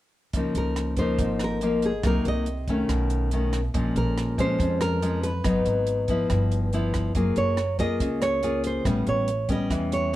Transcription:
0.33 C#2 C#3 F3 A#3 D#4, kick, closed hi-hat
0.55 C#2 A#4, closed hi-hat
0.76 cross-stick, closed hi-hat
0.97 F3 A#3 D#4 C5, kick, closed hi-hat
1.18 G#1 G#2, kick, closed hi-hat
1.39 cross-stick, closed hi-hat
1.44 A#4
1.61 F3 A#3 D#4, closed hi-hat
1.82 G#4, closed hi-hat
2.03 C2 C3 F#3 A#3 D#4 A#4, kick, cross-stick, closed hi-hat
2.25 C2 D#5, closed hi-hat
2.46 closed hi-hat
2.68 D#3 A3 C#4, kick, closed hi-hat
2.89 B1 B2, kick, cross-stick, closed hi-hat
3.10 closed hi-hat
3.31 D#3 A3 C#4, closed hi-hat
3.53 cross-stick, closed hi-hat
3.74 A#1 A#2 F3 G#3 C#4, kick, closed hi-hat
3.96 A#1 A#4, closed hi-hat
4.18 cross-stick, closed hi-hat
4.38 F3 G#3 C#4 C5, kick, closed hi-hat
4.59 F2, kick, closed hi-hat
4.81 A#4, cross-stick, closed hi-hat
5.02 F3 G#3 C#4, closed hi-hat
5.23 B4, closed hi-hat
5.44 G#1 G#2 F#3 B3 D#4, kick, cross-stick, closed hi-hat
5.66 G#1, closed hi-hat
5.87 closed hi-hat
6.08 F3 B3 E4, kick, closed hi-hat
6.30 G1 G2, kick, cross-stick, closed hi-hat
6.52 closed hi-hat
6.73 F3 B3 E4, closed hi-hat
6.94 kick, cross-stick, closed hi-hat
7.15 F#1 F#3 A#3 F4 G#4, kick, closed hi-hat
7.36 F#1 C#5, closed hi-hat
7.57 cross-stick, closed hi-hat
7.79 A#3 F4 G#4 D#5, kick, closed hi-hat
8.00 C#2 C#3, kick, closed hi-hat
8.22 C#5, cross-stick, closed hi-hat
8.43 A#3 F4 G#4, closed hi-hat
8.64 C5, closed hi-hat
8.85 A1 A2 G3 B3 C#4, kick, cross-stick, closed hi-hat
9.07 A1 C#5, closed hi-hat
9.28 closed hi-hat
9.49 G3 B3 C#4 D#5, kick, closed hi-hat
9.70 E2 E3, kick, cross-stick, closed hi-hat
9.92 C#5, closed hi-hat

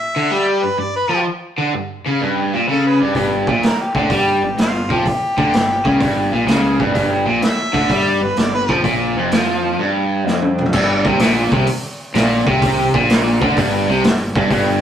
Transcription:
Already playing: E5
0.16 D3
0.31 G3
0.48 D5
0.63 G2 B4
0.78 G2 D5
0.96 B4
1.09 F3
1.58 D3
1.74 G2
2.06 C#3
2.21 G2
2.54 A#2
2.69 C#3 A4
2.87 B4
3.01 G2 D5
3.15 G1 G2, kick, open hi-hat
3.46 A#1 A#2, kick
3.62 A#4, muted fingered electric bass stroke, muted overdriven electric guitar stroke, snare, open hi-hat
3.80 G4
3.95 D2 D3, kick
4.10 G2 G3 G4, kick, open hi-hat
4.43 G1 G2
4.58 G1 G2 F4, snare, open hi-hat
4.90 F2 F3 G4, kick
5.06 kick, open hi-hat
5.37 D2 D3, kick
5.52 G1 G2, snare, open hi-hat
5.85 C#2 C#3, kick
6.00 G1 G2, kick, open hi-hat
6.32 A#1 A#2
6.47 C#2 C#3, snare, open hi-hat
6.79 G1 G2, kick
6.94 G1 G2, kick, open hi-hat
7.26 A#1 A#2
7.41 E5, muted fingered electric bass stroke, muted overdriven electric guitar stroke, snare, open hi-hat
7.73 D2 D3, kick
7.89 G2 G3, kick, open hi-hat
8.08 D5
8.21 G1 G2 B4
8.36 G1 G2 D5, snare, open hi-hat
8.54 B4
8.69 F2 F3, kick
8.84 A#1 A#2, kick, open hi-hat
9.15 F1 F2
9.32 F2 F3, snare, open hi-hat
9.79 G2
10.27 F2, snare
10.42 high tom
10.58 mid tom
10.66 floor tom
10.73 G1 G2, kick, crash
11.05 C2 C3, kick
11.19 A#1 A#2, snare, open hi-hat
11.51 C2 C3, kick
11.67 muted overdriven electric guitar stroke, muted fingered electric bass stroke, open hi-hat
12.15 A#1 A#2, snare, open hi-hat
12.47 C2 C3, kick
12.62 kick, open hi-hat
12.94 A#1 A#2, kick
13.09 snare, open hi-hat
13.41 D2 D3, kick
13.56 G1 G2, kick, open hi-hat
13.88 C2 C3
14.03 G1 G2, snare, open hi-hat
14.35 G1 G2, kick
14.50 G1 G2, kick, open hi-hat

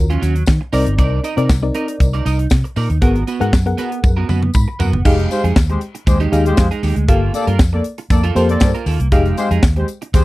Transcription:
Already playing: D#2
0.10 F#3 C#4 F4, closed hi-hat
0.22 D#2 F#3 C#4 F#4, closed hi-hat, tambourine
0.35 muted clean electric guitar stroke, closed hi-hat
0.46 D#3, kick, snare, tambourine
0.61 muted clean electric guitar stroke
0.73 C2 C4 D#4 A#4 D5, open hi-hat, tambourine
0.86 G1, muted clean electric guitar stroke, closed hi-hat
0.98 C2 D#4 A#4 D5, kick, closed hi-hat, tambourine
1.24 D#4 A#4 D#5, closed hi-hat, tambourine
1.37 C3 C4 D#4 A#4 D5, closed hi-hat
1.49 C2, kick, snare, tambourine
1.62 C4 D#4 A#4 D5, muted clean electric guitar stroke
1.75 D#4 A#4 D#5, closed hi-hat
1.88 muted clean electric guitar stroke, closed hi-hat
2.00 C2, muted clean electric guitar stroke, kick, closed hi-hat, tambourine
2.13 D#4 A#4 D5, closed hi-hat
2.25 C2 D#4 A#4 D#5, closed hi-hat, tambourine
2.39 muted clean electric guitar stroke, closed hi-hat
2.50 C3, kick, snare, tambourine
2.64 muted clean electric guitar stroke, closed hi-hat
2.76 A#2 D#4 A#4 D5, open hi-hat, tambourine
2.90 D#2, muted clean electric guitar stroke, closed hi-hat
3.01 G#1 B3 F#4 G#4 A#4 F#5, kick, closed hi-hat
3.16 closed hi-hat
3.27 B3 F#4 B4, closed hi-hat, tambourine
3.40 G#2 B3 F#4 G#4 A#4 F#5, closed hi-hat
3.53 F#2, muted clean electric guitar stroke, kick, snare, tambourine
3.66 B3 G#4 A#4 F#5, muted clean electric guitar stroke, closed hi-hat
3.78 B3 F#4 B4, closed hi-hat, tambourine
3.91 muted clean electric guitar stroke, closed hi-hat
4.03 F#2, muted clean electric guitar stroke, kick, high tom, tambourine
4.17 B3 F#4 A#4
4.29 F#2 B3 F#4 B4, mid tom, tambourine
4.42 muted clean electric guitar stroke, mid tom
4.54 G#2 B5, kick, mid tom, tambourine
4.68 muted clean electric guitar stroke
4.79 F#2 B3 F#4 A#4 F#5, floor tom, tambourine
4.93 F#1, muted clean electric guitar stroke, floor tom
5.05 F1 G#3 D#4 G4 G#4 F5, kick, crash, tambourine
5.19 closed hi-hat
5.30 G#3 G4 C5, muted clean electric guitar stroke, closed hi-hat, tambourine
5.44 F2 G#3 D#4 G#4, closed hi-hat
5.56 D#2, kick, snare, tambourine
5.69 G#3 G4 C5, muted clean electric guitar stroke, closed hi-hat
5.81 closed hi-hat
5.95 muted clean electric guitar stroke, closed hi-hat
6.07 D#2 G#3 G4 C5, muted clean electric guitar stroke, kick, closed hi-hat, tambourine
6.20 G#3 D#4 G4, closed hi-hat
6.32 D#2 G#3 D#4 G4 G#4 F5, closed hi-hat, tambourine
6.46 G#3 G4 C5, muted clean electric guitar stroke, closed hi-hat
6.57 F2, muted clean electric guitar stroke, kick, snare, tambourine
6.71 G#3 D#4 G#4, closed hi-hat
6.83 D#2 G#3 D#4 G4, open hi-hat, tambourine
6.96 D2, muted clean electric guitar stroke, closed hi-hat
7.08 G1 A#3 F4 G4 A4 F5, kick, closed hi-hat
7.34 A#3 A4 D5, muted clean electric guitar stroke, closed hi-hat, tambourine
7.47 G2 A#3 F4 A#4, closed hi-hat
7.59 F2, muted clean electric guitar stroke, kick, snare, tambourine
7.73 A#3 A4 D5, muted clean electric guitar stroke
7.84 closed hi-hat
7.98 muted clean electric guitar stroke, closed hi-hat
8.10 F2 A#3 A4 D5, muted clean electric guitar stroke, kick, closed hi-hat, tambourine
8.24 A#3 F4 A4, closed hi-hat
8.35 F2 A#3 F4 G4 A4 C5, closed hi-hat, tambourine
8.49 A#3 A4 D5, muted clean electric guitar stroke, closed hi-hat
8.60 G2, muted clean electric guitar stroke, kick, snare, tambourine
8.75 A#3 F4 A#4, closed hi-hat
8.86 D#2 A#3 F4 A4, open hi-hat, tambourine
9.00 C2, muted clean electric guitar stroke, closed hi-hat
9.12 F1 G#3 D#4 G4 G#4 F5, kick, closed hi-hat, tambourine
9.26 closed hi-hat
9.37 G#3 G4 C5, muted clean electric guitar stroke, closed hi-hat, tambourine
9.51 F2 G#3 D#4 G#4, closed hi-hat
9.63 D#2, muted clean electric guitar stroke, kick, snare, tambourine
9.76 G#3 G4 C5, muted clean electric guitar stroke, closed hi-hat
9.88 closed hi-hat, tambourine
10.02 muted clean electric guitar stroke, closed hi-hat
10.14 D#2 G#3 G4 C5, muted clean electric guitar stroke, kick, closed hi-hat, tambourine

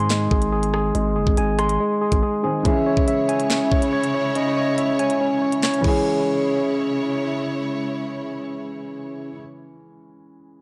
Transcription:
Already playing: G#2 D#3 G#3 C4 G#4 G#5 C6
0.10 G#3, snare, clap, closed hi-hat
0.31 G#1 G#4, kick
0.42 closed hi-hat
0.52 G#4
0.63 closed hi-hat
0.74 G#4, cross-stick
0.95 G#1 G#3, closed hi-hat
1.16 F#1 G#4
1.27 G#1, kick
1.37 G#1 G#5, closed hi-hat
1.59 C6, cross-stick, closed hi-hat
1.69 closed hi-hat
1.80 G#3
2.01 G#4
2.12 G#1, kick, closed hi-hat
2.23 G#4
2.43 D#3 G#3 C4 G#4
2.63 C#3 E3 G#3 C#4 E4 G#4 C#5 E5, kick, closed hi-hat
2.86 C#5
2.97 kick
3.08 E5, closed hi-hat
3.29 G#5, closed hi-hat
3.40 closed hi-hat
3.50 C#4, snare, clap, closed hi-hat
3.72 C#5, kick
3.82 closed hi-hat
3.93 C#5
4.03 closed hi-hat
4.14 C#5
4.35 C#4 D#5, closed hi-hat
4.57 C#5
4.78 E5, closed hi-hat
4.99 C#5 G#5, closed hi-hat
5.10 closed hi-hat
5.21 C#4
5.42 C#5
5.52 closed hi-hat
5.63 C#5, snare, clap
5.74 closed hi-hat
5.78 E3 C#4
5.83 C#3 G#3 C#4 E4 C#5, kick, crash
5.88 G#4

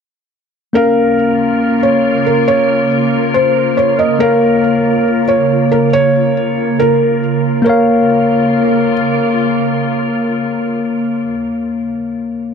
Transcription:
0.73 C#3 A#3 C#4 F4 A#4 F5
1.83 C#5
2.26 A#4
2.48 C#5
3.34 C5
3.77 C#5
3.99 D#5
4.19 C#3 A#3 A#4 C#5 F5
5.28 C#5
5.71 A#4
5.93 C#5
6.79 A#4
7.62 C#3 A#3 F4 A#4
7.67 C#5 F5

